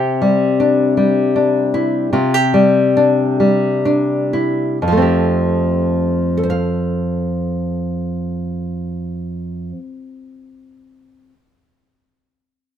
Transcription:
0.00 2.11 C3 medium
0.00 1.74 C4 soft
0.00 2.13 G4 medium
0.22 0.97 G3 medium
0.60 1.34 D4 soft
0.97 2.16 G3 soft
1.36 2.09 D4 soft
1.74 2.08 E4 soft
2.13 4.83 C3 medium
2.13 2.34 F4 soft
2.34 4.84 G4 soft
2.54 3.39 G3 soft
2.97 3.84 D4 soft
3.40 4.77 G3 soft
3.85 4.77 D4 soft
4.33 4.77 E4 soft
4.82 9.71 F2 soft
4.88 9.77 F3 soft
4.92 6.37 A3 soft
4.97 6.43 C4 soft
5.02 6.40 G4 soft
6.37 11.26 A4 soft
6.43 11.32 C5 soft
6.50 11.39 F5 soft

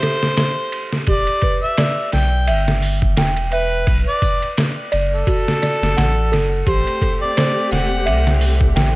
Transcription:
0.00 1.08 G4 medium
0.00 0.37 A4 loud
0.00 0.96 C5 medium
0.00 1.10 C5 medium
0.00 1.10 E5 medium
0.00 snare soft
0.00 ride medium
0.00 tambourine medium
0.23 snare medium
0.23 tambourine soft
0.37 snare loud
0.37 ride medium
0.37 tambourine soft
0.72 ride medium
0.72 tambourine medium
0.92 snare soft
0.92 tambourine soft
1.07 1.25 E1 medium
1.07 1.42 G4 medium
1.07 1.57 D5 medium
1.07 kick loud
1.07 ride medium
1.07 tambourine medium
1.27 ride soft
1.42 1.77 B4 medium
1.42 kick medium
1.42 ride medium
1.42 tambourine medium
1.61 2.08 E5 loud
1.61 tambourine soft
1.77 2.11 D5 medium
1.77 snare loud
1.77 ride medium
1.77 tambourine soft
2.12 2.49 B1 medium
2.12 2.77 G5 medium
2.12 snare soft
2.12 ride medium
2.12 tambourine medium
2.32 tambourine soft
2.47 3.15 G1 loud
2.47 3.15 E5 medium
2.47 ride medium
2.47 tambourine soft
2.67 snare soft
2.67 tambourine soft
2.82 open hi-hat medium
2.82 tambourine medium
3.02 kick medium
3.02 tambourine soft
3.17 3.85 E1 loud
3.17 3.50 G5 medium
3.17 snare loud
3.17 ride medium
3.17 tambourine soft
3.37 ride soft
3.52 4.02 B4 loud
3.52 3.86 E5 medium
3.52 ride medium
3.52 tambourine medium
3.72 tambourine soft
3.87 4.05 B1 medium
3.87 4.21 B4 medium
3.87 kick loud
3.87 ride medium
3.87 tambourine soft
4.08 4.53 D5 medium
4.08 tambourine soft
4.22 kick medium
4.22 ride medium
4.22 tambourine medium
4.41 ride soft
4.41 tambourine soft
4.57 snare loud
4.57 ride medium
4.57 tambourine soft
4.78 tambourine soft
4.92 5.24 F#1 medium
4.92 5.25 D5 loud
4.92 ride medium
4.92 tambourine medium
5.13 6.56 A4 loud
5.13 tambourine soft
5.27 5.59 F#4 medium
5.27 kick loud
5.27 ride medium
5.27 tambourine soft
5.46 snare medium
5.46 tambourine soft
5.62 5.94 D5 medium
5.62 snare soft
5.62 ride medium
5.62 tambourine medium
5.81 5.95 F#1 medium
5.81 snare medium
5.81 tambourine soft
5.96 6.33 A1 loud
5.96 6.19 F#5 medium
5.96 snare medium
5.96 ride medium
5.96 tambourine soft
6.16 tambourine soft
6.31 6.63 F#1 loud
6.31 6.65 A4 medium
6.31 snare soft
6.31 ride medium
6.31 tambourine medium
6.52 tambourine soft
6.66 6.84 A1 medium
6.66 8.96 A3 medium
6.66 8.96 C4 medium
6.66 8.96 G4 medium
6.66 7.00 G4 medium
6.66 7.15 C5 medium
6.66 kick loud
6.66 ride medium
6.66 tambourine medium
6.87 ride soft
7.02 7.35 A4 medium
7.02 kick medium
7.02 ride medium
7.02 tambourine medium
7.22 7.67 D5 loud
7.22 tambourine soft
7.36 7.70 C5 medium
7.36 snare loud
7.36 ride medium
7.36 tambourine medium
7.71 8.08 E1 medium
7.71 8.35 F#5 medium
7.71 snare soft
7.71 ride medium
7.71 tambourine medium
7.91 tambourine soft
8.06 8.73 C2 loud
8.06 8.73 E5 medium
8.06 ride medium
8.06 tambourine soft
8.25 snare soft
8.25 tambourine soft
8.41 open hi-hat medium
8.41 tambourine medium
8.60 kick medium
8.60 tambourine soft
8.76 8.96 A1 medium
8.76 8.96 G5 medium
8.76 snare loud
8.76 ride medium
8.76 tambourine soft

